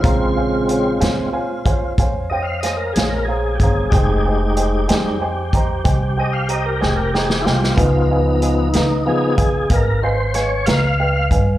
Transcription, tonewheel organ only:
X:1
M:12/8
L:1/16
Q:3/8=62
K:Fm
V:1 name="Tonewheel organ"
F12 z2 e f e B A B A2 [GA]2- | [GA]2 z12 e f e B A B A2 [=EF]2- | [=EF]2 z2 _E4 A4 B2 c2 d2 f4 z2 |]
V:2 name="Tonewheel organ"
[D,A,C]6 [D,A,C]2 z16 | [A,EG]6 [G,A,E]2 z16 | [F,_CE]6 z2 [F,CE]2 z12 z2 |]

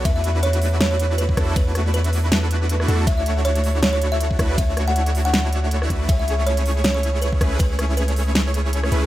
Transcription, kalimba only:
X:1
M:4/4
L:1/16
Q:"Swing 16ths" 1/4=159
K:A
V:1 name="Kalimba"
e e z2 c4 c c z2 B z3 | B z3 B4 z8 | e e z2 c4 c c z e4 z | e z2 f z3 f3 z6 |
e e z2 c4 c c z2 B z3 | B z3 B4 z8 |]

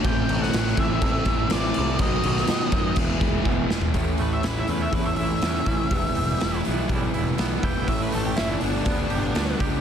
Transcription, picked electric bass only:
X:1
M:4/4
L:1/8
Q:1/4=122
K:Ador
V:1 name="Picked electric bass" clef=bass
A,,, A,,, A,,, A,,, A,,, A,,, A,,, C,, | B,,, B,,, B,, F,, E,,, E,,, E,,, E,,, | [K:Amix] A,,, A,,, A,,, E,, E,, A,,, E,, A,,, | E,,, E,,, E,,, B,,, B,,, E,,, B,,, E,,, |
A,,, A,,, F,,, G,,, D,, G,,, D,, C,, |]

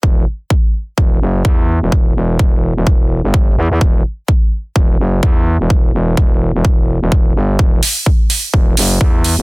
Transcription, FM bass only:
X:1
M:4/4
L:1/16
Q:"Swing 16ths" 1/4=127
K:Em
V:1 name="FM bass" clef=bass
E,,,2 z6 E,,,2 F,,,2 E,,3 E,,,- | E,,,2 E,,,2 E,,,3 E,,,4 G,,,3 E,, E,, | E,,,2 z6 E,,,2 F,,,2 E,,3 E,,,- | E,,,2 E,,,2 E,,,3 E,,,4 E,,,3 G,,,2 |
E,,,2 z6 E,,,2 F,,,2 E,,3 E,,, |]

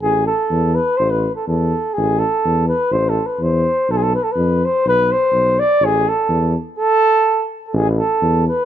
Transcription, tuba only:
X:1
M:2/4
L:1/8
Q:"Swing 16ths" 1/4=125
K:Am
V:1 name="Tuba" clef=bass
A,,,2 E,,2 | A,,,2 E,,2 | A,,,2 E,,2 | A,,,2 E,,2 |
B,,,2 F,,2 | B,,,2 B,,,2 | A,,,2 E,,2 | z4 |
A,,,2 E,,2 |]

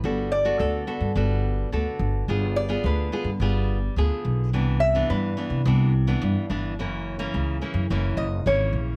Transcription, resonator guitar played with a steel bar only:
X:1
M:4/4
L:1/8
Q:1/4=107
K:G
V:1 name="Resonator guitar played with a steel bar"
z d A3 z3 | z d B3 z3 | z e B3 z3 | z4 z _e ^c2 |]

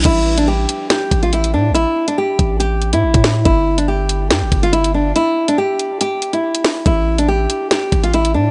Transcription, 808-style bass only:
X:1
M:4/4
L:1/16
Q:1/4=141
K:Ephr
V:1 name="808-style bass" clef=bass
A,,,6 z4 A,,,4 A,,3/2 A,,,/2- | A,,, z4 z A,,,4- A,,, A,, A,,, A,,3 | G,,,8 G,, G,,, G,,,6 | z16 |
A,,,6 z4 A,,,4 A,,3/2 z/2 |]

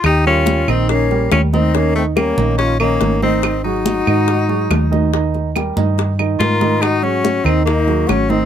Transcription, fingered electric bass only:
X:1
M:4/4
L:1/8
Q:1/4=142
K:Ab
V:1 name="Fingered electric bass" clef=bass
E,,3 B,,,3 E,,2- | E,,3 B,,,3 A,,,2- | A,,,3 A,,3 E,,2- | E,,3 G,,3 A,,2- |
A,,3 E,,3 A,,,2 |]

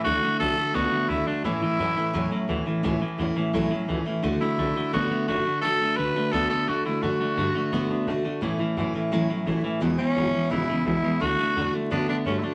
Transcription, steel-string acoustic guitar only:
X:1
M:4/4
L:1/8
Q:1/4=172
K:A
V:1 name="Steel-string acoustic guitar"
[D,A,DF] [A,DF] [D,A,DF] [A,DF] [D,A,DF] [A,DF] [D,A,DF] [A,DF] | [A,,E,A,CE] [A,CE] [E,A,CE] [A,CE] [A,,E,A,CE] [A,CE] [E,A,CE] [A,CE] | [A,,E,A,CE] [A,CE] [E,A,CE] [A,CE] [A,,E,A,CE] [A,CE] [E,A,CE] [A,CE] | [D,A,DF] [A,DF] [D,A,DF] [A,DF] [D,A,DF] [A,DF] [D,A,DF] [A,DF] |
[D,A,DF] [A,DF] [D,A,DF] [A,DF] [D,A,DF] [A,DF] [D,A,DF] [A,DF] | [D,A,DF] [A,DF] [D,A,DF] [A,DF] [D,A,DF] [A,DF] [D,A,DF] [A,DF] | [A,,E,A,CE] [A,CE] [E,A,CE] [A,CE] [A,,E,A,CE] [A,CE] [E,A,CE] [A,CE] | [E,,B,,E,G,B,E] [E,G,B,E] [E,G,B,E] [E,G,B,E] [E,,B,,E,G,B,E] [E,G,B,E] [E,G,B,E] [E,G,B,E] |
[D,A,DF] [A,DF] [D,A,DF] [A,DF] [D,A,DF] [A,DF] [D,A,DF] [A,DF] |]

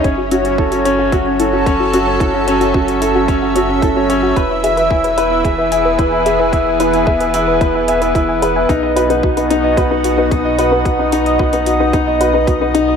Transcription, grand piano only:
X:1
M:4/4
L:1/16
Q:1/4=111
K:E
V:1 name="Grand piano"
C z F C A C C z F C A C C z F C | A C C z F C A C C z F C A C C z | B E e E E z B E e E E z B E e E | E z B E e E E z B E e E E z B E |
D d B D z D D d B D z D D d B D | z D D d B D z D D d B D z D D d |]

